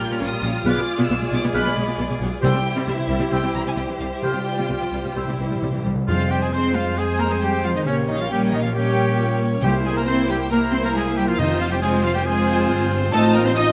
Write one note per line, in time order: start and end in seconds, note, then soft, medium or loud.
0.00 0.62 G3 loud
0.00 2.38 F4 medium
0.00 2.39 F4 medium
0.00 0.62 G4 medium
0.00 0.62 A#4 medium
0.00 0.11 G6 loud
0.10 0.16 A#2 medium
0.10 0.15 C#4 loud
0.10 0.17 F6 loud
0.20 0.26 A#1 medium
0.20 0.27 A#2 medium
0.20 0.25 C#4 medium
0.20 0.66 D#6 loud
0.32 0.37 A#2 medium
0.32 0.37 A#3 medium
0.42 0.47 A#1 loud
0.42 0.48 A#2 loud
0.42 0.49 C#4 loud
0.64 0.69 B1 loud
0.64 0.70 B2 loud
0.64 2.38 G#3 loud
0.64 0.70 B3 medium
0.64 0.81 G#4 medium
0.64 2.39 G#4 medium
0.64 0.81 B4 medium
0.64 2.39 D5 medium
0.64 0.99 D6 loud
0.64 0.86 F6 medium
0.78 0.82 B2 medium
0.78 0.82 B3 medium
0.99 1.04 B2 loud
0.99 1.04 B3 loud
0.99 1.33 E6 loud
1.09 1.14 B1 medium
1.09 1.15 B2 medium
1.09 1.15 B3 medium
1.20 1.26 B2 medium
1.20 1.25 G#3 medium
1.31 1.36 B1 loud
1.31 1.37 B2 loud
1.31 1.36 B3 loud
1.31 1.41 D6 loud
1.43 1.48 B2 medium
1.43 1.48 B3 medium
1.53 1.58 B1 loud
1.53 1.59 B2 medium
1.53 1.59 B3 loud
1.53 1.69 G#4 medium
1.53 1.70 B4 medium
1.53 1.98 B5 loud
1.53 1.75 F6 medium
1.65 1.70 B2 medium
1.65 1.70 B3 medium
1.76 1.80 B1 medium
1.76 1.81 B2 medium
1.76 1.81 G#3 medium
1.87 1.92 B2 medium
1.87 1.93 B3 medium
1.98 2.03 B1 medium
1.98 2.03 B2 medium
1.98 2.04 B3 medium
2.10 2.15 B2 medium
2.10 2.15 G#3 medium
2.20 2.25 B1 loud
2.20 2.25 B2 loud
2.20 2.26 B3 loud
2.41 2.47 C2 loud
2.41 2.47 C3 loud
2.41 3.05 C3 loud
2.41 5.81 G3 loud
2.41 2.48 G3 loud
2.41 4.19 E4 loud
2.41 4.23 E4 medium
2.41 2.57 G4 medium
2.41 5.84 G4 medium
2.41 2.58 C5 medium
2.41 5.84 C5 medium
2.41 2.84 G5 loud
2.41 2.64 E6 medium
2.54 2.58 C3 medium
2.54 2.59 G3 medium
2.76 2.80 C3 loud
2.76 2.81 G3 loud
2.86 2.91 C2 medium
2.86 2.92 C3 medium
2.86 2.92 G3 medium
2.86 3.30 E5 loud
2.97 3.03 C3 medium
2.97 3.02 E3 medium
3.08 3.12 C2 loud
3.08 3.14 C3 loud
3.08 3.14 G3 loud
3.20 3.25 C3 medium
3.20 3.25 G3 medium
3.30 3.36 C2 loud
3.30 3.36 C3 medium
3.30 3.36 G3 medium
3.30 3.46 G4 medium
3.30 3.47 C5 medium
3.30 3.54 G5 loud
3.30 3.53 E6 medium
3.43 3.48 C3 medium
3.43 3.47 G3 medium
3.54 3.58 C2 medium
3.54 3.59 C3 medium
3.54 3.59 E3 medium
3.54 3.59 A#5 loud
3.66 3.70 C3 medium
3.66 3.70 G3 medium
3.66 3.71 G#5 medium
3.76 3.81 C2 medium
3.76 3.82 C3 medium
3.76 3.81 G3 medium
3.76 3.84 G5 loud
3.88 3.93 C3 medium
3.88 3.94 E3 medium
3.99 4.04 C2 medium
3.99 4.05 C3 loud
3.99 4.05 G3 medium
3.99 4.04 F5 medium
4.13 4.23 E5 medium
4.22 4.27 C2 medium
4.22 4.88 C3 loud
4.22 4.28 C3 medium
4.22 4.29 G3 medium
4.22 5.00 F4 medium
4.22 5.14 F4 medium
4.22 4.39 G4 medium
4.22 4.39 C5 medium
4.22 5.59 G5 loud
4.22 4.45 F6 medium
4.34 4.39 C3 medium
4.34 4.40 G3 medium
4.57 4.62 C3 medium
4.57 4.62 G3 medium
4.69 4.74 C2 medium
4.69 4.74 C3 medium
4.69 4.75 G3 medium
4.81 4.85 C3 medium
4.81 4.86 F3 medium
4.92 4.97 C2 medium
4.92 4.97 C3 medium
4.92 4.97 G3 medium
5.03 5.08 C3 medium
5.03 5.09 G3 medium
5.15 5.20 C2 medium
5.15 5.19 C3 medium
5.15 5.23 C3 soft
5.15 5.20 G3 medium
5.15 5.88 E4 medium
5.15 5.82 E4 medium
5.15 5.32 G4 medium
5.15 5.32 C5 medium
5.15 5.38 E6 medium
5.24 5.31 C3 soft
5.24 5.31 C3 medium
5.24 5.32 G3 medium
5.33 5.39 C3 soft
5.38 5.43 C2 medium
5.38 5.43 C3 medium
5.38 5.47 C3 soft
5.38 5.44 E3 medium
5.48 5.54 C3 medium
5.48 5.55 C3 medium
5.48 5.55 G3 medium
5.55 5.62 C3 medium
5.62 5.66 C2 medium
5.62 5.67 C3 medium
5.62 5.69 C3 medium
5.62 5.67 G3 medium
5.70 5.77 C3 medium
5.70 5.78 E3 medium
5.75 5.79 C3 medium
5.75 5.85 C3 medium
5.84 5.89 C2 medium
5.84 5.93 C3 medium
5.84 5.91 C3 medium
5.84 5.89 G3 medium
5.94 6.01 C3 loud
6.06 7.82 F2 medium
6.06 6.71 F2 loud
6.06 6.17 F3 medium
6.06 6.49 G#3 medium
6.06 6.49 C4 medium
6.06 6.50 C4 medium
6.06 6.33 F4 loud
6.06 6.29 F4 medium
6.06 6.50 G#4 medium
6.06 6.50 C5 medium
6.06 6.29 F5 loud
6.06 6.30 F5 loud
6.30 6.42 G3 medium
6.30 6.35 G4 medium
6.30 6.44 G4 medium
6.30 6.41 G5 loud
6.30 6.42 G5 medium
6.42 6.46 G#3 medium
6.42 6.47 G#4 medium
6.42 6.55 G#4 medium
6.42 6.53 G#5 medium
6.42 6.53 G#5 loud
6.52 6.95 G#3 medium
6.52 6.95 C4 medium
6.52 6.75 C4 loud
6.52 6.97 C4 medium
6.52 6.97 G#4 medium
6.52 6.96 C5 medium
6.52 6.77 C5 loud
6.52 6.75 C5 loud
6.52 6.75 C6 loud
6.74 6.97 F3 medium
6.74 6.97 F4 medium
6.74 7.00 F4 medium
6.74 6.97 F5 loud
6.74 6.97 F5 medium
6.96 7.83 G#3 medium
6.96 7.06 G#3 medium
6.96 7.84 C4 medium
6.96 7.19 G#4 loud
6.96 7.84 G#4 medium
6.96 7.21 G#4 medium
6.96 7.84 C5 medium
6.96 7.20 G#5 loud
7.18 7.24 A#3 loud
7.18 7.29 A#4 medium
7.18 7.31 A#4 medium
7.18 7.30 A#5 loud
7.18 7.31 A#5 medium
7.30 7.42 G#3 medium
7.30 7.35 G#4 medium
7.30 7.42 G#4 medium
7.30 7.42 G#5 medium
7.40 7.50 G3 medium
7.40 7.64 G4 medium
7.40 7.64 G4 loud
7.40 7.63 G5 loud
7.40 7.64 G5 medium
7.63 7.75 F3 medium
7.63 7.75 F4 medium
7.63 7.69 F4 medium
7.63 7.68 F5 loud
7.63 7.75 F5 medium
7.75 7.86 D#3 medium
7.75 7.86 D#4 medium
7.75 7.80 D#5 medium
7.75 7.81 D#5 medium
7.85 9.59 A#1 medium
7.85 8.08 C#3 medium
7.85 8.27 A#3 medium
7.85 8.29 A#3 medium
7.85 8.29 C#4 medium
7.85 7.96 C#4 loud
7.85 7.95 C#4 medium
7.85 8.28 G4 medium
7.85 8.29 C#5 medium
7.85 8.07 C#5 loud
7.85 7.94 C#5 loud
8.08 8.19 D#3 medium
8.08 8.13 D#4 medium
8.08 8.19 D#4 medium
8.08 8.19 D#5 loud
8.08 8.13 D#5 medium
8.19 8.30 F3 medium
8.19 8.30 F4 medium
8.19 8.25 F4 medium
8.19 8.30 F5 loud
8.19 8.25 F5 medium
8.28 8.52 G3 loud
8.28 8.70 A#3 medium
8.28 8.73 A#3 medium
8.28 8.73 C#4 medium
8.28 8.70 G4 medium
8.28 8.38 G4 loud
8.28 8.42 G4 medium
8.28 8.73 C#5 medium
8.28 8.51 G5 medium
8.28 8.52 G5 loud
8.50 8.57 D#3 medium
8.50 8.63 D#4 medium
8.50 8.59 D#4 medium
8.50 8.62 D#5 medium
8.50 8.64 D#5 medium
8.61 8.68 F3 medium
8.61 8.74 F4 medium
8.61 8.73 F5 medium
8.61 8.74 F5 medium
8.65 8.75 F4 medium
8.71 9.40 G3 medium
8.71 9.60 A#3 medium
8.71 9.61 A#3 medium
8.71 9.17 C#4 medium
8.71 9.16 G4 medium
8.71 9.39 G4 loud
8.71 9.40 G4 medium
8.71 9.61 C#5 medium
8.71 9.39 G5 loud
8.71 9.40 G5 loud
9.17 9.62 C#4 medium
9.17 9.62 F4 medium
9.60 11.35 C2 medium
9.60 10.25 C3 loud
9.60 9.71 G3 medium
9.60 10.05 A#3 medium
9.60 10.07 A#3 medium
9.60 10.04 E4 medium
9.60 10.07 E4 medium
9.60 9.83 G4 loud
9.60 9.73 G4 loud
9.60 10.06 C5 medium
9.60 9.69 G5 loud
9.83 9.89 G#3 medium
9.83 9.95 G#4 medium
9.83 9.97 G#4 medium
9.83 9.96 G#5 medium
9.83 9.96 G#5 loud
9.94 10.07 A#3 medium
9.94 10.06 A#4 loud
9.94 10.02 A#4 medium
9.94 10.01 A#5 medium
9.98 10.08 A#5 loud
10.06 10.49 A#3 medium
10.06 10.51 A#3 medium
10.06 10.29 C4 loud
10.06 10.50 E4 medium
10.06 10.51 E4 medium
10.06 10.29 C5 loud
10.06 10.50 C5 medium
10.06 10.18 C5 loud
10.06 10.12 C6 loud
10.06 10.30 C6 loud
10.28 10.37 G3 loud
10.28 10.51 G4 loud
10.28 10.40 G4 medium
10.28 10.35 G5 loud
10.28 10.52 G5 loud
10.50 11.37 A#3 medium
10.50 10.59 A#3 loud
10.50 11.38 A#3 medium
10.50 11.37 E4 medium
10.50 11.38 E4 medium
10.50 10.58 A#4 loud
10.50 10.73 A#4 loud
10.50 11.38 C5 medium
10.50 10.73 A#5 loud
10.50 10.58 A#5 loud
10.73 10.77 C4 loud
10.73 10.84 C5 loud
10.73 10.85 C5 loud
10.73 10.84 C6 loud
10.73 10.79 C6 loud
10.83 10.88 A#3 medium
10.83 10.96 A#4 loud
10.83 10.90 A#4 loud
10.83 10.95 A#5 loud
10.83 10.96 A#5 loud
10.95 11.04 G#3 loud
10.95 11.17 G#4 loud
10.95 11.17 G#5 loud
10.95 11.03 G#5 loud
11.17 11.28 G3 loud
11.17 11.30 G4 loud
11.17 11.22 G4 loud
11.17 11.28 G5 loud
11.17 11.29 G5 loud
11.27 11.32 F3 medium
11.27 11.39 F4 medium
11.27 11.41 F4 medium
11.27 11.39 F5 medium
11.27 11.40 F5 loud
11.38 12.66 F1 medium
11.38 12.00 F2 loud
11.38 11.61 D#3 loud
11.38 11.81 C4 medium
11.38 11.70 C4 medium
11.38 11.60 D#4 loud
11.38 11.61 D#4 loud
11.38 11.81 F4 medium
11.38 11.70 F4 medium
11.38 11.82 C5 medium
11.38 11.60 D#5 loud
11.38 11.62 D#5 loud
11.60 11.72 F3 medium
11.60 11.65 F4 medium
11.60 11.66 F4 medium
11.60 11.71 F5 loud
11.60 11.66 F5 loud
11.70 11.83 G3 medium
11.70 11.77 G4 medium
11.70 11.77 G4 loud
11.70 11.82 G5 medium
11.70 11.77 G5 loud
11.81 12.04 G#3 loud
11.81 12.25 C4 medium
11.81 12.25 F4 medium
11.81 12.06 G#4 loud
11.81 11.91 G#4 loud
11.81 12.24 C5 medium
11.81 11.87 G#5 loud
11.81 12.04 G#5 loud
12.03 12.15 F3 loud
12.03 12.14 F4 loud
12.03 12.10 F4 medium
12.03 12.14 F5 loud
12.03 12.15 F5 loud
12.14 12.19 G3 loud
12.14 12.27 G4 loud
12.14 12.20 G4 medium
12.14 12.19 G5 loud
12.14 12.26 G5 loud
12.25 12.89 G#3 loud
12.25 13.12 C4 medium
12.25 13.11 C4 medium
12.25 13.11 F4 medium
12.25 13.11 F4 loud
12.25 12.90 G#4 loud
12.25 12.91 G#4 loud
12.25 13.11 C5 loud
12.25 12.90 G#5 loud
12.25 12.91 G#5 loud
12.68 13.12 G1 loud
13.12 13.72 A1 loud
13.12 13.33 A3 loud
13.12 13.54 C4 loud
13.12 13.56 D#4 loud
13.12 13.56 F4 medium
13.12 13.54 F4 loud
13.12 13.20 A4 loud
13.12 13.24 A4 loud
13.12 13.44 D#5 loud
13.12 13.33 A5 loud
13.34 13.46 A#3 loud
13.34 13.45 A#4 loud
13.34 13.47 A#4 loud
13.34 13.39 A#5 loud
13.34 13.46 A#5 loud
13.44 13.50 C4 loud
13.44 13.50 C5 loud
13.44 13.59 C5 loud
13.44 13.50 C6 loud
13.44 13.52 C6 loud
13.54 13.72 C4 loud
13.54 13.64 D#4 loud
13.54 13.72 D#4 loud
13.54 13.72 F4 loud
13.54 13.72 D#5 loud
13.54 13.72 D#5 medium
13.54 13.72 D#5 loud
13.54 13.60 D#6 loud
13.54 13.64 D#6 loud